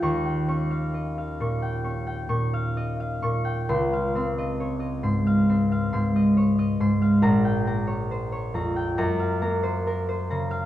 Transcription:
<<
  \new Staff \with { instrumentName = "Harp" } { \time 4/4 \key ees \mixolydian \tempo 4 = 67 << { des'''1 | c'''1 | bes''2 bes''2 | } \\ { <f'' g''>16 g''16 des'''16 f''16 ees''16 f''16 des'''16 g''16 des'''16 g''16 des'''16 f''16 ees''16 f''16 des'''16 g''16 | r16 f''16 c'''16 ees''16 des''16 ees''16 c'''16 f''16 c'''16 f''16 c'''16 ees''16 des''16 ees''16 c'''16 f''16~ | f''16 g''16 bes''16 des''16 c''16 des''16 bes''16 g''16 r16 f''16 bes''16 c''16 bes'16 c''16 bes''16 f''16 | } >> }
  \new Staff \with { instrumentName = "Harp" } { \clef bass \time 4/4 \key ees \mixolydian <ees, f des'>8 des'4 bes,8 des'8 bes,4 bes,8 | des,8 c'4 aes,8 c'8 aes,4 aes,8 | bes,,8 bes4 f,8 ges,8 bes4 des8 | }
>>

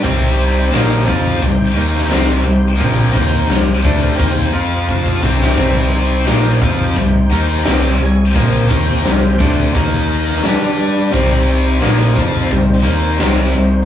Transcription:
<<
  \new Staff \with { instrumentName = "Tonewheel organ" } { \time 4/4 \key c \minor \tempo 4 = 86 <ees' g' c'' g''>1 | <c' g' c'' g''>2~ <c' g' c'' g''>8 <f' c'' f''>4 <ees' g' c'' g''>8~ | <ees' g' c'' g''>2.~ \tuplet 3/2 { <ees' g' c'' g''>8. <e' aes' des'' aes''>8 <c' g' c'' g''>16~ } | <c' g' c'' g''>2 <ees' bes' ees''>4 <d' g' d''>4 |
<g c' ees' c''>1 | }
  \new Staff \with { instrumentName = "Distorted electric guitar" } { \clef bass \time 4/4 \key c \minor <c g c'>4 <bes, f bes>8 <f c' f'>8 <c g>8 <ees bes ees'>8 <c g c'>8 <c g>8 | <bes, f bes>8 <ees bes ees'>8 <c g>8 <d a d'>8 <ees bes ees'>8 <f c' f'>4 <c g c'>8 | <c g c'>4 <bes, f bes>8 <f c' f'>8 <c g>8 <ees bes ees'>8 <c g c'>8 <c g>8 | <bes, f bes>8 <ees bes ees'>8 <c g>8 <d a d'>8 <ees bes ees'>4 <g d' g'>4 |
<c g c'>4 <bes, f bes>8 <f c' f'>8 <c g>8 <ees bes ees'>8 <c g c'>8 <c g>8 | }
  \new Staff \with { instrumentName = "Overdriven electric guitar" } { \clef bass \time 4/4 \key c \minor <c g c'>4 <bes, f bes>8 <f c' f'>8 <c g>8 <ees bes ees'>8 <c g c'>8 <c g>8 | <bes, f bes>8 <ees bes ees'>8 <c g>8 <d a d'>8 <ees bes ees'>8 <f c' f'>4 <c g c'>8 | <c g c'>4 <bes, f bes>8 <f c' f'>8 <c g>8 <ees bes ees'>8 <c g c'>8 <c g>8 | <bes, f bes>8 <ees bes ees'>8 <c g>8 <d a d'>8 <ees bes ees'>4 <g d' g'>4 |
<c g c'>4 <bes, f bes>8 <f c' f'>8 <c g>8 <ees bes ees'>8 <c g c'>8 <c g>8 | }
  \new Staff \with { instrumentName = "Fingered electric bass" } { \clef bass \time 4/4 \key c \minor c,4 bes,,8 f,8 c,8 ees,8 c,8 c,8 | bes,,8 ees,8 c,8 d,8 ees,8 f,4 c,8 | c,4 bes,,8 f,8 c,8 ees,8 c,8 c,8 | bes,,8 ees,8 c,8 d,8 ees,4 g,4 |
c,4 bes,,8 f,8 c,8 ees,8 c,8 c,8 | }
  \new DrumStaff \with { instrumentName = "Drums" } \drummode { \time 4/4 <hh bd>4 <hh sn>8 bd8 <hh bd>8. sn16 <hh sn>4 | <hh bd>8 bd8 <hh sn>8 bd8 <hh bd>4 bd16 bd16 bd16 sn16 | <hh bd>16 sn8. <hh sn>8 bd8 <hh bd>4 <hh sn>4 | <hh bd>8 bd8 <hh sn>8 bd8 <hh bd>8. sn16 <hh sn>4 |
<hh bd>4 <hh sn>8 bd8 <hh bd>4 <hh sn>4 | }
>>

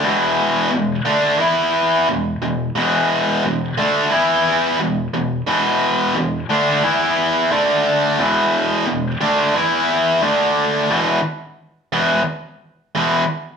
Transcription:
\new Staff \with { instrumentName = "Distorted electric guitar" } { \clef bass \time 4/4 \key d \mixolydian \tempo 4 = 88 <e, b, e>4 <e, b,>8 <d a d'>8 <e b e'>4 <e, b,>8 <e, b,>8 | <e, b, e>4 <e, b,>8 <d a d'>8 <e b e'>4 <e, b,>8 <e, b,>8 | <e, b, e>4 <e, b,>8 <d a d'>8 <e b e'>4 <d a d'>4 | <e, b, e>4 <e, b,>8 <d a d'>8 <e b e'>4 <d a d'>4 |
<e, b, e>8 r4 <e, b, e>8 r4 <e, b, e>8 r8 | }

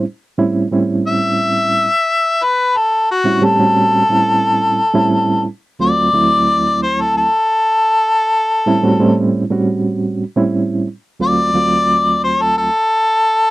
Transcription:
<<
  \new Staff \with { instrumentName = "Harmonica" } { \time 4/4 \key d \major \tempo 4 = 89 r4. e''2 b'8 | a'8 fis'8 a'2. | r8 d''4. c''16 a'16 a'4.~ | a'4. r2 r8 |
r8 d''4. c''16 a'16 a'4. | }
  \new Staff \with { instrumentName = "Reed electric piano" } { \time 4/4 \key d \major r8 <a, g bis cis' e'>8 <a, g bis cis' e'>4.~ <a, g bis cis' e'>16 r4 r16 | r8. <a, g bis cis' e'>16 <a, g bis cis' g'>16 <a, g bis cis' fis'>8. <a, g bis cis' e'>4 r16 <a, g bis cis' e'>8. | r8 <d, fis a c' eis'>8 <d, fis a c' e'>4.~ <d, fis a c' e'>16 r4 r16 | r8. <a, g bis cis' e'>16 <a, g bis cis' fis'>16 <a, g bis cis' e'>8. <a, g bis cis' fis'>4 r16 <a, g bis cis' e'>8. |
r8 <d, fis a c' eis'>8 <d, fis a c' eis'>4.~ <d, fis a c' eis'>16 r4 r16 | }
>>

